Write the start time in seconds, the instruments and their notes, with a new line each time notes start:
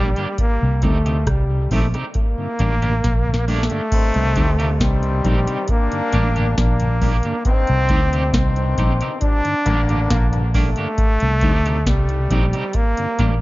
Already playing: fingered electric bass A#1, trombone G3
0.16 tonewheel organ G2 D3, clean electric guitar A#3 D4 G4, closed hi-hat
0.38 trombone A#3, kick, closed hi-hat
0.62 fingered electric bass C2, tonewheel organ C3
0.82 fingered electric bass D2, tonewheel organ G3 C4 D#4, trombone A3, clean electric guitar C4 D#4 G4, kick, closed hi-hat
1.06 tonewheel organ C3, clean electric guitar C4 D#4 G4, closed hi-hat
1.26 fingered electric bass C2, trombone G3, kick, cross-stick, closed hi-hat
1.50 tonewheel organ C3
1.71 fingered electric bass A#1, tonewheel organ G3 C4 D#4, trombone A3, clean electric guitar C4 D#4 G4, kick, open hi-hat
1.94 tonewheel organ C3, clean electric guitar C4 D#4 G4, cross-stick, closed hi-hat
2.14 trombone A#3, kick, closed hi-hat
2.38 tonewheel organ G2 D3
2.59 fingered electric bass A1, tonewheel organ G3 A#3 D4, clean electric guitar A#3 D4 G4, kick, closed hi-hat
2.82 tonewheel organ G2 D3, clean electric guitar A#3 D4 G4, closed hi-hat
3.04 fingered electric bass A#1, kick, snare, closed hi-hat
3.26 tonewheel organ G2 D3
3.34 snare
3.48 tonewheel organ G3 A#3 D4, trombone A3, clean electric guitar A#3 D4 G4, open hi-hat
3.63 snare
3.70 tonewheel organ G2 D3, clean electric guitar A#3 D4 G4, closed hi-hat
3.92 trombone section G2 D#3 C4, kick, closed hi-hat, crash
4.14 fingered electric bass C2, tonewheel organ C3, closed hi-hat
4.36 fingered electric bass D2, tonewheel organ G3 C4 D#4, clean electric guitar C4 D#4 G4, kick, closed hi-hat
4.59 trombone section A#2 G3 A#3, tonewheel organ C3, clean electric guitar C4 D#4 G4, closed hi-hat
4.80 fingered electric bass C2, trombone section G2 D#3 C4, trombone G3, kick, snare, closed hi-hat
5.03 tonewheel organ C3, closed hi-hat
5.24 fingered electric bass A#1, tonewheel organ G3 C4 D#4, clean electric guitar C4 D#4 G4, kick, closed hi-hat
5.47 tonewheel organ C3, clean electric guitar C4 D#4 G4, closed hi-hat
5.68 trombone section G3 A#3 D4, trombone A#3, kick, closed hi-hat
5.92 tonewheel organ G2 D3, closed hi-hat
6.13 fingered electric bass A1, tonewheel organ G3 A#3 D4, clean electric guitar A#3 D4 G4, kick, closed hi-hat
6.36 tonewheel organ G2 D3, clean electric guitar A#3 D4 G4, closed hi-hat
6.58 fingered electric bass A#1, trombone A#3, kick, snare, closed hi-hat
6.80 tonewheel organ G2 D3, closed hi-hat
7.01 tonewheel organ G3 A#3 D4, clean electric guitar A#3 D4 G4, kick, open hi-hat
7.23 tonewheel organ G2 D3, clean electric guitar A#3 D4 G4, closed hi-hat
7.45 trombone section G2 D#3 C4, trombone C4, kick, closed hi-hat
7.67 fingered electric bass C2, tonewheel organ C3, closed hi-hat
7.89 fingered electric bass D2, tonewheel organ G3 C4 D#4, clean electric guitar C4 D#4 G4, kick, closed hi-hat
8.13 trombone section A#2 G3 A#3, tonewheel organ C3, clean electric guitar C4 D#4 G4, closed hi-hat
8.33 fingered electric bass C2, trombone section G2 D#3 C4, kick, snare, closed hi-hat
8.56 tonewheel organ C3, closed hi-hat
8.78 fingered electric bass A#1, tonewheel organ G3 C4 D#4, clean electric guitar C4 D#4 G4, kick, closed hi-hat
9.01 tonewheel organ C3, clean electric guitar C4 D#4 G4, closed hi-hat
9.21 trombone section A#2 G3 D4, trombone D4, kick, closed hi-hat
9.45 tonewheel organ G2 D3, closed hi-hat
9.66 fingered electric bass A1, trombone section G2 D3 A#3, tonewheel organ G3 A#3 D4, clean electric guitar A#3 D4 G4, kick, closed hi-hat
9.89 tonewheel organ G2 D3, clean electric guitar A#3 D4 G4, closed hi-hat
10.10 fingered electric bass A#1, trombone A#3, kick, snare, closed hi-hat
10.33 tonewheel organ G2 D3, closed hi-hat
10.54 tonewheel organ G3 A#3 D4, trombone A3, clean electric guitar A#3 D4 G4, kick, open hi-hat
10.76 tonewheel organ G2 D3, clean electric guitar A#3 D4 G4, closed hi-hat
10.98 kick, closed hi-hat
11.20 fingered electric bass C2, tonewheel organ C3, closed hi-hat
11.41 fingered electric bass D2, tonewheel organ G3 C4 D#4, clean electric guitar C4 D#4 G4, kick, closed hi-hat
11.66 tonewheel organ C3, clean electric guitar C4 D#4 G4, closed hi-hat
11.86 fingered electric bass C2, trombone G3, kick, snare, closed hi-hat
12.09 tonewheel organ C3, closed hi-hat
12.30 fingered electric bass A#1, tonewheel organ G3 C4 D#4, clean electric guitar C4 D#4 G4, kick, closed hi-hat
12.53 tonewheel organ C3, clean electric guitar C4 D#4 G4, closed hi-hat
12.73 trombone A#3, kick, closed hi-hat
12.97 tonewheel organ G2 D3, closed hi-hat
13.19 fingered electric bass A1, tonewheel organ G3 A#3 D4, clean electric guitar A#3 D4 G4, kick, closed hi-hat